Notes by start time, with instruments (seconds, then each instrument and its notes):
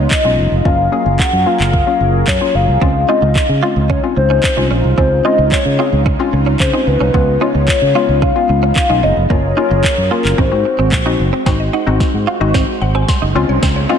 Already playing: supersaw synth C#3 G#3 B3 D#4 F4, soft synth lead D#5
0.11 kick, clap
0.25 fingered electric bass B1, synth pluck G#3 B3 C#4 F4
0.38 fingered electric bass F#1
0.52 fingered electric bass F1
0.65 fingered electric bass F#1, synth pluck F#3 A#3 C#4 F4, supersaw synth F#3 C#4 G#4 A#4, soft synth lead F5, kick
0.92 synth pluck F#3 A#3 C#4 G#4, soft synth lead F5
1.06 fingered electric bass F#1
1.19 soft synth lead F#5, muted fingered electric bass stroke, kick, clap
1.33 fingered electric bass F#2
1.46 synth pluck F#3 A#3 C#4 F4, soft synth lead F5
1.60 fingered electric bass F#1, clap
1.74 kick
1.87 synth pluck F#3 A#3 C#4 F4
2.00 fingered electric bass F#1
2.27 fingered electric bass F#2, soft synth lead C#5, kick, clap
2.41 synth pluck F#3 A#3 C#4 F4
2.55 fingered electric bass F#1, soft synth lead F5
2.68 fingered electric bass C2
2.81 fingered electric bass C#2, supersaw synth C#3 G#3 D#4 F4, synth pluck G#3 C4 C#4 F4, clean electric guitar C4, kick
3.08 synth pluck G#3 C4 C#4 F4, clean electric guitar D#4, soft synth lead D#5
3.22 fingered electric bass C#2, muted clean electric guitar stroke
3.36 muted fingered electric bass stroke, kick, clap
3.49 fingered electric bass C#3
3.63 synth pluck G#3 C4 C#4 F4, clean electric guitar F4
3.76 fingered electric bass C#2
3.90 clean electric guitar C#4, soft synth lead C#5, kick
4.03 synth pluck G#3 C4 C#4 F4
4.17 fingered electric bass C#2, soft synth lead C5, muted clean electric guitar stroke
4.30 clean electric guitar C#4
4.43 muted clean electric guitar stroke, kick, clap
4.57 fingered electric bass C2, synth pluck G#3 C4 C#4 F4, clean electric guitar D#4
4.71 fingered electric bass A#1, clean electric guitar C#4
4.84 fingered electric bass C2
4.98 fingered electric bass C#2, synth pluck G#3 C4 C#4 F4, clean electric guitar C4, soft synth lead C5, kick
5.25 synth pluck G#3 C4 C#4 F4, clean electric guitar D#4, soft synth lead D#5
5.38 fingered electric bass C#2, muted clean electric guitar stroke
5.52 soft synth lead C#5, muted fingered electric bass stroke, kick, clap
5.65 fingered electric bass C#3
5.79 synth pluck G#3 C4 C#4 G#4, clean electric guitar F4
5.93 fingered electric bass C#2
6.06 clean electric guitar C#4, kick
6.19 synth pluck G#3 C4 C#4 F4
6.33 fingered electric bass C#2, muted clean electric guitar stroke
6.46 clean electric guitar C#4
6.60 fingered electric bass C#3, soft synth lead C5, kick, clap
6.73 synth pluck G#3 C4 C#4 F4, clean electric guitar D#4
6.87 fingered electric bass C#2, soft synth lead B4, muted clean electric guitar stroke
7.00 fingered electric bass C2, clean electric guitar C#4
7.14 fingered electric bass C#2, synth pluck G#3 B3 C#4 F4, clean electric guitar B3, supersaw synth B3, kick
7.41 synth pluck G#3 B3 C#4 F4, clean electric guitar D#4, soft synth lead C#5
7.55 fingered electric bass C#2, muted clean electric guitar stroke
7.68 kick, clap
7.82 fingered electric bass C#3
7.95 synth pluck G#3 B3 C#4 F4, clean electric guitar F4
8.09 fingered electric bass C#2
8.22 clean electric guitar C#4, soft synth lead F5, kick
8.35 synth pluck G#3 B3 C#4 F4
8.49 fingered electric bass C#2, muted clean electric guitar stroke
8.63 clean electric guitar C#4
8.76 soft synth lead F5, muted clean electric guitar stroke, kick, clap
8.89 fingered electric bass B1, synth pluck G#3 B3 C#4 F4, clean electric guitar D#4
9.03 fingered electric bass F#1, clean electric guitar C#4, soft synth lead D#5
9.17 fingered electric bass F1
9.23 soft synth lead D#5
9.30 fingered electric bass F#1, synth pluck F#3 A#3 C#4 F4, supersaw synth F#3 C#4 F4 G#4 A#4, clean electric guitar A#3, soft synth lead C#5, kick
9.57 synth pluck F#3 A#3 C#4 F4, clean electric guitar D#4
9.71 fingered electric bass F#1, muted clean electric guitar stroke
9.84 kick, clap
9.98 fingered electric bass F#2
10.11 synth pluck F#3 A#3 C#4 F4, clean electric guitar F4, soft synth lead A#4
10.25 fingered electric bass F#1, clap
10.38 fingered electric bass G#1, synth pluck G#3 C4 D#4 F#4, supersaw synth G#3 F#4, clean electric guitar C4, soft synth lead C5, kick
10.51 fingered electric bass G#2, synth pluck G#3 C4 D#4 F#4
10.65 muted clean electric guitar stroke
10.79 fingered electric bass G#1, clean electric guitar C4
10.92 kick, clap
11.06 synth pluck G#3 C4 D#4 F#4, clean electric guitar D#4
11.19 fingered electric bass F#1, muted clean electric guitar stroke
11.33 clean electric guitar C4
11.46 fingered electric bass G#1, synth pluck G#3 C4 D#4 F#4, supersaw synth G#3 F#4 C5, clean electric guitar C4, synth arpeggio sound C5, kick, snare, riser
11.60 synth arpeggio sound D#5
11.73 clean electric guitar D#4, synth arpeggio sound F#5
11.87 fingered electric bass G#1, synth pluck G#3 C4 D#4 F#4, muted clean electric guitar stroke
12.00 kick, snare
12.14 fingered electric bass G#2
12.27 clean electric guitar F4
12.40 fingered electric bass G#1, synth pluck G#3 C4 D#4 F#4, synth arpeggio sound D#5
12.54 clean electric guitar C4, synth arpeggio sound C5, kick, snare
12.81 fingered electric bass G#1, synth arpeggio sound F#5, muted clean electric guitar stroke
12.95 clean electric guitar C4, synth arpeggio sound G#5
13.08 synth arpeggio sound C6, muted clean electric guitar stroke, kick, snare
13.22 fingered electric bass F#1, clean electric guitar D#4
13.35 fingered electric bass C#2, supersaw synth C#3 D#4 F4, synth pluck G#3 C4 C#4 F4, clean electric guitar C#4
13.49 fingered electric bass C2, synth arpeggio sound C#5
13.63 fingered electric bass C#2, clean electric guitar C4, synth arpeggio sound C5, kick, snare
13.76 synth arpeggio sound C#5
13.89 synth pluck G#3 C4 C#4 F4, clean electric guitar D#4, synth arpeggio sound F5